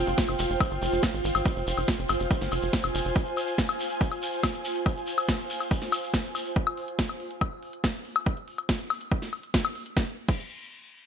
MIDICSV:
0, 0, Header, 1, 5, 480
1, 0, Start_track
1, 0, Key_signature, -4, "minor"
1, 0, Tempo, 425532
1, 1642, Time_signature, 4, 2, 24, 8
1, 12480, End_track
2, 0, Start_track
2, 0, Title_t, "Ambient pad"
2, 0, Program_c, 0, 92
2, 0, Note_on_c, 0, 65, 94
2, 0, Note_on_c, 0, 72, 84
2, 0, Note_on_c, 0, 79, 72
2, 1794, Note_on_c, 0, 80, 75
2, 1937, Note_off_c, 0, 79, 0
2, 7402, Note_off_c, 0, 65, 0
2, 7402, Note_off_c, 0, 72, 0
2, 7402, Note_off_c, 0, 80, 0
2, 12480, End_track
3, 0, Start_track
3, 0, Title_t, "Analog synth bass"
3, 0, Program_c, 1, 38
3, 82, Note_on_c, 1, 29, 93
3, 164, Note_off_c, 1, 29, 0
3, 322, Note_on_c, 1, 29, 88
3, 404, Note_off_c, 1, 29, 0
3, 442, Note_on_c, 1, 29, 101
3, 524, Note_off_c, 1, 29, 0
3, 562, Note_on_c, 1, 29, 90
3, 644, Note_off_c, 1, 29, 0
3, 802, Note_on_c, 1, 31, 88
3, 884, Note_off_c, 1, 31, 0
3, 922, Note_on_c, 1, 29, 104
3, 1004, Note_off_c, 1, 29, 0
3, 1042, Note_on_c, 1, 29, 93
3, 1124, Note_off_c, 1, 29, 0
3, 1282, Note_on_c, 1, 32, 86
3, 1364, Note_off_c, 1, 32, 0
3, 1402, Note_on_c, 1, 32, 100
3, 1484, Note_off_c, 1, 32, 0
3, 1522, Note_on_c, 1, 32, 90
3, 1604, Note_off_c, 1, 32, 0
3, 1762, Note_on_c, 1, 29, 86
3, 1844, Note_off_c, 1, 29, 0
3, 1882, Note_on_c, 1, 29, 99
3, 1964, Note_off_c, 1, 29, 0
3, 2002, Note_on_c, 1, 29, 91
3, 2084, Note_off_c, 1, 29, 0
3, 2242, Note_on_c, 1, 29, 87
3, 2324, Note_off_c, 1, 29, 0
3, 2362, Note_on_c, 1, 31, 99
3, 2444, Note_off_c, 1, 31, 0
3, 2482, Note_on_c, 1, 29, 93
3, 2564, Note_off_c, 1, 29, 0
3, 2722, Note_on_c, 1, 31, 89
3, 2804, Note_off_c, 1, 31, 0
3, 2842, Note_on_c, 1, 29, 103
3, 2924, Note_off_c, 1, 29, 0
3, 2962, Note_on_c, 1, 29, 92
3, 3044, Note_off_c, 1, 29, 0
3, 3202, Note_on_c, 1, 29, 85
3, 3284, Note_off_c, 1, 29, 0
3, 3322, Note_on_c, 1, 29, 101
3, 3404, Note_off_c, 1, 29, 0
3, 3442, Note_on_c, 1, 29, 91
3, 3524, Note_off_c, 1, 29, 0
3, 12480, End_track
4, 0, Start_track
4, 0, Title_t, "Shekere"
4, 79, Note_on_c, 9, 82, 38
4, 192, Note_off_c, 9, 82, 0
4, 203, Note_on_c, 9, 82, 55
4, 316, Note_off_c, 9, 82, 0
4, 335, Note_on_c, 9, 82, 30
4, 440, Note_off_c, 9, 82, 0
4, 440, Note_on_c, 9, 82, 100
4, 552, Note_off_c, 9, 82, 0
4, 563, Note_on_c, 9, 82, 43
4, 676, Note_off_c, 9, 82, 0
4, 682, Note_on_c, 9, 82, 54
4, 795, Note_off_c, 9, 82, 0
4, 802, Note_on_c, 9, 82, 27
4, 914, Note_off_c, 9, 82, 0
4, 929, Note_on_c, 9, 82, 88
4, 1042, Note_off_c, 9, 82, 0
4, 1044, Note_on_c, 9, 82, 43
4, 1156, Note_off_c, 9, 82, 0
4, 1170, Note_on_c, 9, 82, 53
4, 1280, Note_off_c, 9, 82, 0
4, 1280, Note_on_c, 9, 82, 29
4, 1393, Note_off_c, 9, 82, 0
4, 1405, Note_on_c, 9, 82, 89
4, 1518, Note_off_c, 9, 82, 0
4, 1529, Note_on_c, 9, 82, 37
4, 1640, Note_off_c, 9, 82, 0
4, 1640, Note_on_c, 9, 82, 50
4, 1753, Note_off_c, 9, 82, 0
4, 1768, Note_on_c, 9, 82, 26
4, 1881, Note_off_c, 9, 82, 0
4, 1889, Note_on_c, 9, 82, 89
4, 2001, Note_off_c, 9, 82, 0
4, 2006, Note_on_c, 9, 82, 42
4, 2117, Note_off_c, 9, 82, 0
4, 2117, Note_on_c, 9, 82, 57
4, 2230, Note_off_c, 9, 82, 0
4, 2245, Note_on_c, 9, 82, 26
4, 2357, Note_off_c, 9, 82, 0
4, 2357, Note_on_c, 9, 82, 96
4, 2470, Note_off_c, 9, 82, 0
4, 2480, Note_on_c, 9, 82, 38
4, 2593, Note_off_c, 9, 82, 0
4, 2601, Note_on_c, 9, 82, 52
4, 2714, Note_off_c, 9, 82, 0
4, 2725, Note_on_c, 9, 82, 25
4, 2838, Note_off_c, 9, 82, 0
4, 2841, Note_on_c, 9, 82, 89
4, 2954, Note_off_c, 9, 82, 0
4, 2959, Note_on_c, 9, 82, 42
4, 3072, Note_off_c, 9, 82, 0
4, 3085, Note_on_c, 9, 82, 55
4, 3198, Note_off_c, 9, 82, 0
4, 3208, Note_on_c, 9, 82, 26
4, 3320, Note_off_c, 9, 82, 0
4, 3323, Note_on_c, 9, 82, 102
4, 3436, Note_off_c, 9, 82, 0
4, 3441, Note_on_c, 9, 82, 40
4, 3553, Note_off_c, 9, 82, 0
4, 3558, Note_on_c, 9, 82, 54
4, 3670, Note_off_c, 9, 82, 0
4, 3672, Note_on_c, 9, 82, 26
4, 3785, Note_off_c, 9, 82, 0
4, 3805, Note_on_c, 9, 82, 85
4, 3916, Note_off_c, 9, 82, 0
4, 3916, Note_on_c, 9, 82, 38
4, 4029, Note_off_c, 9, 82, 0
4, 4044, Note_on_c, 9, 82, 54
4, 4157, Note_off_c, 9, 82, 0
4, 4162, Note_on_c, 9, 82, 25
4, 4275, Note_off_c, 9, 82, 0
4, 4286, Note_on_c, 9, 82, 83
4, 4399, Note_off_c, 9, 82, 0
4, 4399, Note_on_c, 9, 82, 38
4, 4512, Note_off_c, 9, 82, 0
4, 4524, Note_on_c, 9, 82, 49
4, 4637, Note_off_c, 9, 82, 0
4, 4644, Note_on_c, 9, 82, 26
4, 4756, Note_off_c, 9, 82, 0
4, 4766, Note_on_c, 9, 82, 98
4, 4879, Note_off_c, 9, 82, 0
4, 4887, Note_on_c, 9, 82, 39
4, 4997, Note_off_c, 9, 82, 0
4, 4997, Note_on_c, 9, 82, 53
4, 5110, Note_off_c, 9, 82, 0
4, 5122, Note_on_c, 9, 82, 27
4, 5235, Note_off_c, 9, 82, 0
4, 5244, Note_on_c, 9, 82, 92
4, 5356, Note_off_c, 9, 82, 0
4, 5356, Note_on_c, 9, 82, 41
4, 5469, Note_off_c, 9, 82, 0
4, 5482, Note_on_c, 9, 82, 47
4, 5595, Note_off_c, 9, 82, 0
4, 5605, Note_on_c, 9, 82, 25
4, 5717, Note_off_c, 9, 82, 0
4, 5717, Note_on_c, 9, 82, 88
4, 5830, Note_off_c, 9, 82, 0
4, 5840, Note_on_c, 9, 82, 38
4, 5953, Note_off_c, 9, 82, 0
4, 5956, Note_on_c, 9, 82, 46
4, 6069, Note_off_c, 9, 82, 0
4, 6087, Note_on_c, 9, 82, 25
4, 6200, Note_off_c, 9, 82, 0
4, 6203, Note_on_c, 9, 82, 93
4, 6316, Note_off_c, 9, 82, 0
4, 6328, Note_on_c, 9, 82, 37
4, 6440, Note_off_c, 9, 82, 0
4, 6446, Note_on_c, 9, 82, 51
4, 6559, Note_off_c, 9, 82, 0
4, 6561, Note_on_c, 9, 82, 26
4, 6673, Note_off_c, 9, 82, 0
4, 6678, Note_on_c, 9, 82, 91
4, 6791, Note_off_c, 9, 82, 0
4, 6812, Note_on_c, 9, 82, 37
4, 6924, Note_off_c, 9, 82, 0
4, 6924, Note_on_c, 9, 82, 46
4, 7037, Note_off_c, 9, 82, 0
4, 7044, Note_on_c, 9, 82, 24
4, 7157, Note_off_c, 9, 82, 0
4, 7167, Note_on_c, 9, 82, 91
4, 7279, Note_off_c, 9, 82, 0
4, 7289, Note_on_c, 9, 82, 38
4, 7402, Note_off_c, 9, 82, 0
4, 12480, End_track
5, 0, Start_track
5, 0, Title_t, "Drums"
5, 82, Note_on_c, 9, 42, 51
5, 195, Note_off_c, 9, 42, 0
5, 202, Note_on_c, 9, 36, 126
5, 202, Note_on_c, 9, 38, 124
5, 202, Note_on_c, 9, 42, 76
5, 315, Note_off_c, 9, 36, 0
5, 315, Note_off_c, 9, 38, 0
5, 315, Note_off_c, 9, 42, 0
5, 322, Note_on_c, 9, 76, 40
5, 435, Note_off_c, 9, 76, 0
5, 442, Note_on_c, 9, 46, 111
5, 555, Note_off_c, 9, 46, 0
5, 562, Note_on_c, 9, 42, 50
5, 675, Note_off_c, 9, 42, 0
5, 682, Note_on_c, 9, 36, 122
5, 683, Note_on_c, 9, 42, 79
5, 683, Note_on_c, 9, 76, 80
5, 795, Note_off_c, 9, 36, 0
5, 795, Note_off_c, 9, 42, 0
5, 795, Note_off_c, 9, 76, 0
5, 923, Note_on_c, 9, 46, 107
5, 1035, Note_off_c, 9, 46, 0
5, 1042, Note_on_c, 9, 42, 52
5, 1155, Note_off_c, 9, 42, 0
5, 1162, Note_on_c, 9, 36, 121
5, 1163, Note_on_c, 9, 38, 121
5, 1163, Note_on_c, 9, 42, 79
5, 1163, Note_on_c, 9, 76, 39
5, 1275, Note_off_c, 9, 36, 0
5, 1275, Note_off_c, 9, 38, 0
5, 1275, Note_off_c, 9, 42, 0
5, 1275, Note_off_c, 9, 76, 0
5, 1402, Note_on_c, 9, 46, 112
5, 1515, Note_off_c, 9, 46, 0
5, 1522, Note_on_c, 9, 42, 50
5, 1522, Note_on_c, 9, 76, 76
5, 1635, Note_off_c, 9, 42, 0
5, 1635, Note_off_c, 9, 76, 0
5, 1642, Note_on_c, 9, 36, 121
5, 1643, Note_on_c, 9, 42, 76
5, 1755, Note_off_c, 9, 36, 0
5, 1756, Note_off_c, 9, 42, 0
5, 1882, Note_on_c, 9, 46, 110
5, 1995, Note_off_c, 9, 46, 0
5, 2002, Note_on_c, 9, 42, 51
5, 2002, Note_on_c, 9, 76, 40
5, 2115, Note_off_c, 9, 42, 0
5, 2115, Note_off_c, 9, 76, 0
5, 2122, Note_on_c, 9, 36, 121
5, 2122, Note_on_c, 9, 38, 116
5, 2122, Note_on_c, 9, 42, 74
5, 2235, Note_off_c, 9, 36, 0
5, 2235, Note_off_c, 9, 38, 0
5, 2235, Note_off_c, 9, 42, 0
5, 2362, Note_on_c, 9, 46, 106
5, 2362, Note_on_c, 9, 76, 78
5, 2475, Note_off_c, 9, 46, 0
5, 2475, Note_off_c, 9, 76, 0
5, 2483, Note_on_c, 9, 42, 49
5, 2595, Note_off_c, 9, 42, 0
5, 2602, Note_on_c, 9, 36, 120
5, 2602, Note_on_c, 9, 42, 77
5, 2715, Note_off_c, 9, 36, 0
5, 2715, Note_off_c, 9, 42, 0
5, 2722, Note_on_c, 9, 38, 36
5, 2835, Note_off_c, 9, 38, 0
5, 2842, Note_on_c, 9, 46, 109
5, 2842, Note_on_c, 9, 76, 38
5, 2955, Note_off_c, 9, 46, 0
5, 2955, Note_off_c, 9, 76, 0
5, 2962, Note_on_c, 9, 42, 49
5, 3075, Note_off_c, 9, 42, 0
5, 3082, Note_on_c, 9, 36, 118
5, 3082, Note_on_c, 9, 38, 116
5, 3082, Note_on_c, 9, 42, 76
5, 3195, Note_off_c, 9, 36, 0
5, 3195, Note_off_c, 9, 38, 0
5, 3195, Note_off_c, 9, 42, 0
5, 3203, Note_on_c, 9, 42, 34
5, 3203, Note_on_c, 9, 76, 79
5, 3315, Note_off_c, 9, 42, 0
5, 3315, Note_off_c, 9, 76, 0
5, 3322, Note_on_c, 9, 46, 107
5, 3435, Note_off_c, 9, 46, 0
5, 3443, Note_on_c, 9, 42, 49
5, 3556, Note_off_c, 9, 42, 0
5, 3562, Note_on_c, 9, 36, 117
5, 3563, Note_on_c, 9, 42, 75
5, 3675, Note_off_c, 9, 36, 0
5, 3675, Note_off_c, 9, 42, 0
5, 3803, Note_on_c, 9, 46, 106
5, 3803, Note_on_c, 9, 76, 41
5, 3916, Note_off_c, 9, 46, 0
5, 3916, Note_off_c, 9, 76, 0
5, 3923, Note_on_c, 9, 42, 49
5, 4035, Note_off_c, 9, 42, 0
5, 4042, Note_on_c, 9, 36, 121
5, 4043, Note_on_c, 9, 38, 113
5, 4043, Note_on_c, 9, 42, 75
5, 4155, Note_off_c, 9, 36, 0
5, 4156, Note_off_c, 9, 38, 0
5, 4156, Note_off_c, 9, 42, 0
5, 4163, Note_on_c, 9, 76, 84
5, 4276, Note_off_c, 9, 76, 0
5, 4283, Note_on_c, 9, 46, 101
5, 4395, Note_off_c, 9, 46, 0
5, 4402, Note_on_c, 9, 42, 48
5, 4515, Note_off_c, 9, 42, 0
5, 4522, Note_on_c, 9, 36, 118
5, 4523, Note_on_c, 9, 42, 78
5, 4635, Note_off_c, 9, 36, 0
5, 4635, Note_off_c, 9, 42, 0
5, 4643, Note_on_c, 9, 76, 42
5, 4755, Note_off_c, 9, 76, 0
5, 4762, Note_on_c, 9, 46, 103
5, 4875, Note_off_c, 9, 46, 0
5, 4882, Note_on_c, 9, 42, 49
5, 4995, Note_off_c, 9, 42, 0
5, 5002, Note_on_c, 9, 36, 116
5, 5002, Note_on_c, 9, 38, 111
5, 5002, Note_on_c, 9, 42, 76
5, 5002, Note_on_c, 9, 76, 82
5, 5115, Note_off_c, 9, 36, 0
5, 5115, Note_off_c, 9, 38, 0
5, 5115, Note_off_c, 9, 42, 0
5, 5115, Note_off_c, 9, 76, 0
5, 5242, Note_on_c, 9, 46, 103
5, 5355, Note_off_c, 9, 46, 0
5, 5362, Note_on_c, 9, 42, 49
5, 5475, Note_off_c, 9, 42, 0
5, 5482, Note_on_c, 9, 36, 115
5, 5482, Note_on_c, 9, 42, 78
5, 5482, Note_on_c, 9, 76, 42
5, 5595, Note_off_c, 9, 36, 0
5, 5595, Note_off_c, 9, 42, 0
5, 5595, Note_off_c, 9, 76, 0
5, 5722, Note_on_c, 9, 46, 104
5, 5835, Note_off_c, 9, 46, 0
5, 5842, Note_on_c, 9, 42, 52
5, 5842, Note_on_c, 9, 76, 82
5, 5955, Note_off_c, 9, 42, 0
5, 5955, Note_off_c, 9, 76, 0
5, 5962, Note_on_c, 9, 36, 113
5, 5962, Note_on_c, 9, 38, 112
5, 5962, Note_on_c, 9, 42, 77
5, 6075, Note_off_c, 9, 36, 0
5, 6075, Note_off_c, 9, 38, 0
5, 6075, Note_off_c, 9, 42, 0
5, 6202, Note_on_c, 9, 46, 99
5, 6315, Note_off_c, 9, 46, 0
5, 6322, Note_on_c, 9, 42, 52
5, 6322, Note_on_c, 9, 76, 39
5, 6435, Note_off_c, 9, 42, 0
5, 6435, Note_off_c, 9, 76, 0
5, 6442, Note_on_c, 9, 36, 113
5, 6442, Note_on_c, 9, 42, 79
5, 6555, Note_off_c, 9, 36, 0
5, 6555, Note_off_c, 9, 42, 0
5, 6562, Note_on_c, 9, 38, 36
5, 6675, Note_off_c, 9, 38, 0
5, 6682, Note_on_c, 9, 46, 97
5, 6682, Note_on_c, 9, 76, 78
5, 6795, Note_off_c, 9, 46, 0
5, 6795, Note_off_c, 9, 76, 0
5, 6803, Note_on_c, 9, 42, 50
5, 6915, Note_off_c, 9, 42, 0
5, 6922, Note_on_c, 9, 36, 115
5, 6922, Note_on_c, 9, 38, 115
5, 6922, Note_on_c, 9, 42, 77
5, 7035, Note_off_c, 9, 36, 0
5, 7035, Note_off_c, 9, 38, 0
5, 7035, Note_off_c, 9, 42, 0
5, 7162, Note_on_c, 9, 46, 103
5, 7162, Note_on_c, 9, 76, 41
5, 7275, Note_off_c, 9, 46, 0
5, 7275, Note_off_c, 9, 76, 0
5, 7282, Note_on_c, 9, 42, 50
5, 7395, Note_off_c, 9, 42, 0
5, 7402, Note_on_c, 9, 36, 112
5, 7402, Note_on_c, 9, 42, 82
5, 7515, Note_off_c, 9, 36, 0
5, 7515, Note_off_c, 9, 42, 0
5, 7522, Note_on_c, 9, 76, 82
5, 7635, Note_off_c, 9, 76, 0
5, 7642, Note_on_c, 9, 46, 102
5, 7755, Note_off_c, 9, 46, 0
5, 7762, Note_on_c, 9, 42, 53
5, 7875, Note_off_c, 9, 42, 0
5, 7882, Note_on_c, 9, 36, 113
5, 7882, Note_on_c, 9, 38, 112
5, 7882, Note_on_c, 9, 42, 79
5, 7995, Note_off_c, 9, 36, 0
5, 7995, Note_off_c, 9, 38, 0
5, 7995, Note_off_c, 9, 42, 0
5, 8003, Note_on_c, 9, 76, 41
5, 8116, Note_off_c, 9, 76, 0
5, 8123, Note_on_c, 9, 46, 98
5, 8235, Note_off_c, 9, 46, 0
5, 8243, Note_on_c, 9, 42, 53
5, 8355, Note_off_c, 9, 42, 0
5, 8362, Note_on_c, 9, 36, 108
5, 8362, Note_on_c, 9, 42, 83
5, 8362, Note_on_c, 9, 76, 83
5, 8475, Note_off_c, 9, 36, 0
5, 8475, Note_off_c, 9, 42, 0
5, 8475, Note_off_c, 9, 76, 0
5, 8602, Note_on_c, 9, 46, 97
5, 8715, Note_off_c, 9, 46, 0
5, 8722, Note_on_c, 9, 42, 54
5, 8835, Note_off_c, 9, 42, 0
5, 8842, Note_on_c, 9, 36, 111
5, 8843, Note_on_c, 9, 38, 117
5, 8843, Note_on_c, 9, 42, 82
5, 8843, Note_on_c, 9, 76, 40
5, 8955, Note_off_c, 9, 36, 0
5, 8955, Note_off_c, 9, 38, 0
5, 8955, Note_off_c, 9, 42, 0
5, 8955, Note_off_c, 9, 76, 0
5, 9082, Note_on_c, 9, 46, 102
5, 9195, Note_off_c, 9, 46, 0
5, 9202, Note_on_c, 9, 42, 51
5, 9202, Note_on_c, 9, 76, 80
5, 9315, Note_off_c, 9, 42, 0
5, 9315, Note_off_c, 9, 76, 0
5, 9322, Note_on_c, 9, 36, 114
5, 9323, Note_on_c, 9, 42, 84
5, 9435, Note_off_c, 9, 36, 0
5, 9435, Note_off_c, 9, 42, 0
5, 9443, Note_on_c, 9, 42, 39
5, 9556, Note_off_c, 9, 42, 0
5, 9563, Note_on_c, 9, 46, 104
5, 9675, Note_off_c, 9, 46, 0
5, 9683, Note_on_c, 9, 42, 55
5, 9683, Note_on_c, 9, 76, 37
5, 9795, Note_off_c, 9, 42, 0
5, 9795, Note_off_c, 9, 76, 0
5, 9802, Note_on_c, 9, 36, 114
5, 9802, Note_on_c, 9, 38, 117
5, 9802, Note_on_c, 9, 42, 80
5, 9915, Note_off_c, 9, 36, 0
5, 9915, Note_off_c, 9, 38, 0
5, 9915, Note_off_c, 9, 42, 0
5, 10042, Note_on_c, 9, 46, 97
5, 10042, Note_on_c, 9, 76, 75
5, 10155, Note_off_c, 9, 46, 0
5, 10155, Note_off_c, 9, 76, 0
5, 10162, Note_on_c, 9, 42, 53
5, 10275, Note_off_c, 9, 42, 0
5, 10282, Note_on_c, 9, 36, 110
5, 10282, Note_on_c, 9, 46, 59
5, 10395, Note_off_c, 9, 36, 0
5, 10395, Note_off_c, 9, 46, 0
5, 10402, Note_on_c, 9, 38, 36
5, 10515, Note_off_c, 9, 38, 0
5, 10522, Note_on_c, 9, 46, 98
5, 10522, Note_on_c, 9, 76, 37
5, 10635, Note_off_c, 9, 46, 0
5, 10635, Note_off_c, 9, 76, 0
5, 10642, Note_on_c, 9, 42, 54
5, 10755, Note_off_c, 9, 42, 0
5, 10762, Note_on_c, 9, 36, 113
5, 10762, Note_on_c, 9, 38, 121
5, 10762, Note_on_c, 9, 42, 81
5, 10875, Note_off_c, 9, 36, 0
5, 10875, Note_off_c, 9, 38, 0
5, 10875, Note_off_c, 9, 42, 0
5, 10882, Note_on_c, 9, 42, 38
5, 10882, Note_on_c, 9, 76, 78
5, 10995, Note_off_c, 9, 42, 0
5, 10995, Note_off_c, 9, 76, 0
5, 11002, Note_on_c, 9, 46, 101
5, 11115, Note_off_c, 9, 46, 0
5, 11122, Note_on_c, 9, 42, 53
5, 11235, Note_off_c, 9, 42, 0
5, 11242, Note_on_c, 9, 36, 111
5, 11242, Note_on_c, 9, 38, 85
5, 11355, Note_off_c, 9, 36, 0
5, 11355, Note_off_c, 9, 38, 0
5, 11602, Note_on_c, 9, 36, 115
5, 11602, Note_on_c, 9, 49, 82
5, 11715, Note_off_c, 9, 36, 0
5, 11715, Note_off_c, 9, 49, 0
5, 12480, End_track
0, 0, End_of_file